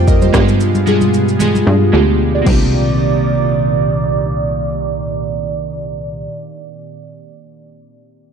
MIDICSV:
0, 0, Header, 1, 5, 480
1, 0, Start_track
1, 0, Key_signature, -3, "minor"
1, 0, Tempo, 530973
1, 547, Time_signature, 4, 2, 24, 8
1, 7529, End_track
2, 0, Start_track
2, 0, Title_t, "Synth keys"
2, 0, Program_c, 0, 88
2, 0, Control_c, 0, 64, 127
2, 0, Note_on_c, 0, 58, 82
2, 0, Note_on_c, 0, 60, 76
2, 0, Note_on_c, 0, 63, 76
2, 0, Note_on_c, 0, 65, 77
2, 0, Note_on_c, 0, 67, 55
2, 0, Note_on_c, 0, 72, 65
2, 0, Note_on_c, 0, 74, 58
2, 0, Note_on_c, 0, 79, 71
2, 68, Note_on_c, 0, 75, 72
2, 73, Note_on_c, 0, 70, 63
2, 193, Note_off_c, 0, 75, 0
2, 196, Note_off_c, 0, 70, 0
2, 200, Note_off_c, 0, 72, 0
2, 200, Note_on_c, 0, 72, 63
2, 204, Note_off_c, 0, 67, 0
2, 204, Note_on_c, 0, 67, 51
2, 295, Note_on_c, 0, 56, 90
2, 302, Note_on_c, 0, 59, 76
2, 307, Note_off_c, 0, 67, 0
2, 307, Note_on_c, 0, 62, 78
2, 312, Note_off_c, 0, 65, 0
2, 312, Note_on_c, 0, 65, 76
2, 318, Note_on_c, 0, 67, 97
2, 319, Note_off_c, 0, 63, 0
2, 320, Control_c, 0, 64, 0
2, 323, Note_off_c, 0, 58, 0
2, 325, Note_off_c, 0, 79, 0
2, 326, Note_off_c, 0, 60, 0
2, 327, Note_off_c, 0, 74, 0
2, 427, Note_off_c, 0, 72, 0
2, 475, Control_c, 0, 64, 127
2, 695, Note_off_c, 0, 56, 0
2, 698, Note_off_c, 0, 59, 0
2, 701, Note_off_c, 0, 62, 0
2, 703, Note_off_c, 0, 65, 0
2, 706, Note_off_c, 0, 67, 0
2, 776, Note_on_c, 0, 56, 78
2, 781, Note_on_c, 0, 59, 75
2, 787, Note_on_c, 0, 62, 73
2, 793, Note_on_c, 0, 65, 73
2, 797, Note_on_c, 0, 68, 93
2, 1175, Note_off_c, 0, 56, 0
2, 1178, Note_off_c, 0, 59, 0
2, 1181, Note_off_c, 0, 62, 0
2, 1184, Note_off_c, 0, 65, 0
2, 1186, Note_off_c, 0, 68, 0
2, 1257, Note_on_c, 0, 56, 81
2, 1264, Note_on_c, 0, 59, 76
2, 1269, Note_on_c, 0, 62, 72
2, 1274, Note_on_c, 0, 65, 78
2, 1280, Note_on_c, 0, 68, 92
2, 1656, Note_off_c, 0, 56, 0
2, 1659, Note_off_c, 0, 59, 0
2, 1662, Note_off_c, 0, 62, 0
2, 1664, Note_off_c, 0, 65, 0
2, 1667, Note_off_c, 0, 68, 0
2, 1737, Note_on_c, 0, 56, 83
2, 1742, Note_on_c, 0, 59, 73
2, 1748, Note_on_c, 0, 62, 75
2, 1753, Note_on_c, 0, 65, 75
2, 1758, Note_on_c, 0, 67, 95
2, 1987, Note_off_c, 0, 62, 0
2, 1990, Note_off_c, 0, 65, 0
2, 1993, Note_off_c, 0, 67, 0
2, 2035, Note_off_c, 0, 56, 0
2, 2037, Note_off_c, 0, 59, 0
2, 2122, Note_on_c, 0, 74, 61
2, 2128, Note_on_c, 0, 68, 51
2, 2186, Note_on_c, 0, 58, 80
2, 2208, Note_on_c, 0, 60, 72
2, 2223, Note_off_c, 0, 74, 0
2, 2226, Note_off_c, 0, 68, 0
2, 2231, Note_on_c, 0, 62, 73
2, 2240, Control_c, 0, 64, 0
2, 2253, Note_on_c, 0, 63, 69
2, 2274, Note_on_c, 0, 67, 87
2, 2333, Control_c, 0, 64, 127
2, 2479, Control_c, 0, 64, 0
2, 2658, Control_c, 0, 64, 127
2, 5636, Note_off_c, 0, 58, 0
2, 5659, Note_off_c, 0, 60, 0
2, 5681, Note_off_c, 0, 62, 0
2, 5703, Note_off_c, 0, 63, 0
2, 5725, Note_off_c, 0, 67, 0
2, 7529, End_track
3, 0, Start_track
3, 0, Title_t, "Analog synth pad"
3, 0, Program_c, 1, 89
3, 0, Note_on_c, 1, 48, 75
3, 0, Note_on_c, 1, 55, 70
3, 0, Note_on_c, 1, 65, 87
3, 290, Note_off_c, 1, 48, 0
3, 290, Note_off_c, 1, 55, 0
3, 308, Note_on_c, 1, 47, 73
3, 308, Note_on_c, 1, 56, 71
3, 2191, Note_off_c, 1, 65, 0
3, 2208, Note_off_c, 1, 47, 0
3, 2208, Note_off_c, 1, 56, 0
3, 2226, Note_on_c, 1, 46, 76
3, 2226, Note_on_c, 1, 51, 69
3, 2227, Note_on_c, 1, 74, 81
3, 5677, Note_off_c, 1, 46, 0
3, 5677, Note_off_c, 1, 51, 0
3, 5677, Note_off_c, 1, 74, 0
3, 7529, End_track
4, 0, Start_track
4, 0, Title_t, "Analog synth bass"
4, 0, Program_c, 2, 38
4, 0, Note_on_c, 2, 41, 93
4, 276, Note_off_c, 2, 41, 0
4, 307, Note_on_c, 2, 43, 103
4, 1471, Note_off_c, 2, 43, 0
4, 1508, Note_on_c, 2, 43, 98
4, 1732, Note_off_c, 2, 43, 0
4, 1747, Note_on_c, 2, 38, 93
4, 2196, Note_off_c, 2, 38, 0
4, 2228, Note_on_c, 2, 36, 95
4, 5678, Note_off_c, 2, 36, 0
4, 7529, End_track
5, 0, Start_track
5, 0, Title_t, "Drums"
5, 67, Note_on_c, 9, 36, 82
5, 69, Note_on_c, 9, 82, 74
5, 158, Note_off_c, 9, 36, 0
5, 159, Note_off_c, 9, 82, 0
5, 197, Note_on_c, 9, 82, 58
5, 201, Note_on_c, 9, 63, 65
5, 287, Note_off_c, 9, 82, 0
5, 292, Note_off_c, 9, 63, 0
5, 306, Note_on_c, 9, 37, 99
5, 307, Note_on_c, 9, 36, 84
5, 308, Note_on_c, 9, 63, 73
5, 308, Note_on_c, 9, 82, 81
5, 397, Note_off_c, 9, 36, 0
5, 397, Note_off_c, 9, 37, 0
5, 398, Note_off_c, 9, 63, 0
5, 398, Note_off_c, 9, 82, 0
5, 439, Note_on_c, 9, 82, 48
5, 529, Note_off_c, 9, 82, 0
5, 546, Note_on_c, 9, 82, 76
5, 636, Note_off_c, 9, 82, 0
5, 676, Note_on_c, 9, 63, 70
5, 679, Note_on_c, 9, 82, 52
5, 767, Note_off_c, 9, 63, 0
5, 769, Note_off_c, 9, 82, 0
5, 785, Note_on_c, 9, 82, 63
5, 787, Note_on_c, 9, 63, 69
5, 876, Note_off_c, 9, 82, 0
5, 877, Note_off_c, 9, 63, 0
5, 916, Note_on_c, 9, 82, 50
5, 917, Note_on_c, 9, 63, 87
5, 1007, Note_off_c, 9, 63, 0
5, 1007, Note_off_c, 9, 82, 0
5, 1029, Note_on_c, 9, 82, 72
5, 1120, Note_off_c, 9, 82, 0
5, 1161, Note_on_c, 9, 82, 49
5, 1252, Note_off_c, 9, 82, 0
5, 1267, Note_on_c, 9, 64, 71
5, 1267, Note_on_c, 9, 82, 98
5, 1358, Note_off_c, 9, 64, 0
5, 1358, Note_off_c, 9, 82, 0
5, 1402, Note_on_c, 9, 63, 76
5, 1406, Note_on_c, 9, 82, 42
5, 1493, Note_off_c, 9, 63, 0
5, 1496, Note_off_c, 9, 82, 0
5, 2227, Note_on_c, 9, 63, 78
5, 2228, Note_on_c, 9, 36, 99
5, 2228, Note_on_c, 9, 49, 86
5, 2317, Note_off_c, 9, 63, 0
5, 2318, Note_off_c, 9, 36, 0
5, 2318, Note_off_c, 9, 49, 0
5, 7529, End_track
0, 0, End_of_file